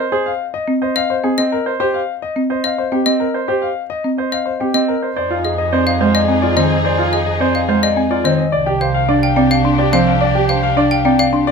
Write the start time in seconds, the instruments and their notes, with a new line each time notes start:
Already playing: grand piano C5
0.12 grand piano G#4 C5
0.26 grand piano F5
0.54 grand piano D#5
0.68 marimba C4
0.82 grand piano C5 D#5
0.96 xylophone D#5, grand piano F5
1.10 grand piano C5
1.24 marimba C4, grand piano G#4 G#5
1.38 grand piano C4, xylophone D#5
1.52 grand piano A#4
1.66 grand piano C5
1.80 grand piano G4 C5
1.94 grand piano F5
2.22 grand piano D#5
2.36 marimba C4
2.50 grand piano C5 D#5
2.64 xylophone D#5, grand piano F5
2.78 grand piano C5
2.92 marimba C4, grand piano G4 G5
3.06 grand piano C4, xylophone D#5
3.20 grand piano A#4
3.34 grand piano C5
3.48 grand piano G4 C5
3.62 grand piano F5
3.90 grand piano D#5
4.04 marimba C4
4.18 grand piano C5 D#5
4.32 xylophone D#5, grand piano F5
4.46 grand piano C5
4.60 marimba C4, grand piano G4 G5
4.74 grand piano C4, xylophone D#5
4.88 grand piano A#4
5.02 grand piano C5
5.16 double bass F2, violin section D#4 G#4, grand piano C5 D5
5.30 grand piano F4 F5
5.45 grand piano G#4, xylophone D#5
5.58 grand piano D#5
5.73 marimba C4, grand piano C5 D5
5.87 grand piano D#5, xylophone F5
6.00 marimba G#3, grand piano C5 F5
6.14 grand piano D5, xylophone D#5
6.28 marimba C4, grand piano G#5
6.42 grand piano F4 D5
6.57 marimba D#3, grand piano C4 C5, xylophone D#5
6.71 grand piano D#5
6.85 grand piano C5 D5
6.98 grand piano F4 F5
7.13 grand piano G#4, xylophone D#5
7.26 grand piano D#5
7.40 marimba C4, grand piano C5 D5
7.54 grand piano D#5, xylophone F5
7.68 marimba G#3, grand piano C5 F5
7.83 grand piano D5, xylophone D#5
7.97 marimba C4, grand piano G#5
8.11 grand piano F4 D5
8.24 marimba D#3, grand piano C4 C5, xylophone D#5
8.38 grand piano D#5
8.52 double bass C2, violin section D4 G4, grand piano D5
8.66 grand piano G4 G5
8.81 grand piano C5, xylophone F5
8.94 grand piano F5
9.08 marimba D4, grand piano D5
9.22 grand piano F5, xylophone G5
9.36 marimba C4, grand piano D5 G5
9.51 grand piano D5, xylophone F5
9.65 marimba D4, grand piano C6
9.78 grand piano G4 D5
9.93 marimba F3, grand piano C4 C5, xylophone F5
10.07 grand piano F5
10.21 grand piano D5
10.35 grand piano G4 G5
10.49 grand piano C5, xylophone F5
10.63 grand piano F5
10.77 marimba D4, grand piano D5
10.91 grand piano F5, xylophone G5
11.05 marimba C4, grand piano D5 G5
11.19 grand piano D5, xylophone F5
11.33 marimba D4, grand piano C6
11.47 grand piano G4 D5